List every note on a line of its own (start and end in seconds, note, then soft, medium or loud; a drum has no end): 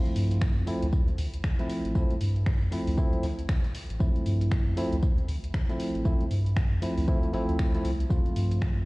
0.00 0.11 D2 loud
0.00 0.64 F3 medium
0.00 0.64 A3 medium
0.00 0.65 C4 medium
0.00 0.65 E4 medium
0.05 closed hi-hat medium
0.16 0.58 G2 medium
0.16 open hi-hat loud
0.16 tambourine medium
0.31 closed hi-hat soft
0.31 closed hi-hat medium
0.41 finger snap loud
0.41 kick loud
0.41 snare loud
0.41 tambourine medium
0.57 0.65 F2 loud
0.67 0.85 F3 medium
0.67 0.85 A3 medium
0.67 0.86 C4 medium
0.67 0.86 E4 medium
0.67 open hi-hat loud
0.67 tambourine medium
0.82 1.15 D2 loud
0.82 closed hi-hat medium
0.93 kick loud
0.93 tambourine medium
1.08 closed hi-hat soft
1.18 1.30 D2 medium
1.18 open hi-hat medium
1.18 tambourine medium
1.34 closed hi-hat medium
1.44 finger snap loud
1.44 kick loud
1.44 snare loud
1.44 tambourine medium
1.59 1.92 F3 medium
1.59 1.93 A3 medium
1.59 1.93 C4 medium
1.59 1.93 E4 medium
1.59 snare soft
1.59 closed hi-hat medium
1.69 open hi-hat loud
1.69 tambourine medium
1.85 1.93 A1 medium
1.85 closed hi-hat medium
1.95 2.16 D2 loud
1.95 2.13 F3 medium
1.95 2.14 A3 medium
1.95 2.14 C4 medium
1.95 2.14 E4 medium
1.95 kick loud
1.95 tambourine medium
2.10 closed hi-hat medium
2.21 2.63 G2 medium
2.21 open hi-hat loud
2.21 tambourine medium
2.36 closed hi-hat medium
2.46 finger snap loud
2.46 kick loud
2.46 snare loud
2.46 tambourine medium
2.62 2.70 F2 loud
2.72 2.95 F3 medium
2.72 2.95 A3 medium
2.72 2.95 C4 medium
2.72 2.96 E4 medium
2.72 open hi-hat loud
2.72 tambourine medium
2.87 3.20 D2 loud
2.87 open hi-hat medium
2.97 3.25 F3 medium
2.97 3.25 A3 medium
2.97 3.25 C4 medium
2.97 3.25 E4 medium
2.97 kick loud
2.97 tambourine medium
3.13 closed hi-hat soft
3.23 3.35 D2 medium
3.23 snare soft
3.23 open hi-hat loud
3.23 tambourine medium
3.39 closed hi-hat medium
3.49 finger snap loud
3.49 kick loud
3.49 snare loud
3.49 tambourine medium
3.64 snare soft
3.64 closed hi-hat medium
3.75 open hi-hat loud
3.75 tambourine medium
3.90 3.98 A1 medium
3.90 closed hi-hat medium
3.99 4.21 D2 loud
3.99 4.74 F3 medium
3.99 4.75 A3 medium
3.99 4.75 C4 medium
3.99 4.75 E4 medium
3.99 kick loud
3.99 tambourine medium
4.16 closed hi-hat soft
4.26 4.68 G2 medium
4.26 open hi-hat loud
4.26 tambourine medium
4.41 closed hi-hat soft
4.41 closed hi-hat medium
4.51 finger snap loud
4.51 kick loud
4.51 snare loud
4.51 tambourine medium
4.67 4.75 F2 loud
4.77 4.96 F3 medium
4.77 4.96 A3 medium
4.77 4.96 C4 medium
4.77 4.96 E4 medium
4.77 open hi-hat loud
4.77 tambourine medium
4.93 5.25 D2 loud
4.93 closed hi-hat medium
5.03 kick loud
5.03 tambourine medium
5.18 closed hi-hat soft
5.28 5.40 D2 medium
5.28 open hi-hat loud
5.28 tambourine medium
5.44 closed hi-hat medium
5.54 finger snap loud
5.54 kick loud
5.54 snare loud
5.54 tambourine medium
5.69 6.03 F3 medium
5.69 6.03 A3 medium
5.69 6.03 C4 medium
5.69 6.03 E4 medium
5.69 snare soft
5.69 closed hi-hat soft
5.80 open hi-hat loud
5.80 tambourine medium
5.95 6.03 A1 medium
5.95 closed hi-hat medium
6.05 6.27 D2 loud
6.05 6.24 F3 medium
6.05 6.24 A3 medium
6.05 6.24 C4 medium
6.05 6.24 E4 medium
6.05 kick loud
6.05 tambourine medium
6.21 closed hi-hat soft
6.31 6.73 G2 medium
6.31 open hi-hat loud
6.31 tambourine medium
6.46 closed hi-hat medium
6.57 finger snap loud
6.57 kick loud
6.57 snare loud
6.57 tambourine medium
6.72 6.80 F2 loud
6.82 7.05 F3 medium
6.82 7.05 A3 medium
6.82 7.06 C4 medium
6.82 7.06 E4 medium
6.82 open hi-hat loud
6.82 tambourine medium
6.98 7.30 D2 loud
6.98 open hi-hat medium
7.08 7.31 F3 medium
7.08 7.32 A3 medium
7.08 7.32 C4 medium
7.08 7.32 E4 medium
7.08 kick loud
7.08 tambourine medium
7.23 closed hi-hat soft
7.33 7.46 A1 medium
7.33 7.71 F3 medium
7.33 7.71 A3 medium
7.33 7.71 C4 medium
7.33 7.71 E4 medium
7.33 snare soft
7.33 open hi-hat loud
7.33 tambourine medium
7.49 7.81 D2 medium
7.49 closed hi-hat medium
7.59 finger snap loud
7.59 kick loud
7.59 snare loud
7.59 tambourine medium
7.74 7.89 F3 medium
7.74 7.90 A3 medium
7.74 7.90 C4 medium
7.74 7.90 E4 medium
7.74 snare soft
7.74 closed hi-hat soft
7.85 8.06 C2 medium
7.85 open hi-hat loud
7.85 tambourine medium
8.00 closed hi-hat medium
8.10 8.32 D2 loud
8.10 8.85 F3 medium
8.10 8.85 A3 medium
8.10 8.85 C4 medium
8.10 8.85 F4 medium
8.10 kick loud
8.10 tambourine medium
8.26 closed hi-hat soft
8.36 8.79 G2 medium
8.36 open hi-hat loud
8.36 tambourine medium
8.52 closed hi-hat soft
8.52 closed hi-hat medium
8.62 finger snap loud
8.62 kick loud
8.62 snare loud
8.62 tambourine medium
8.77 8.85 F2 loud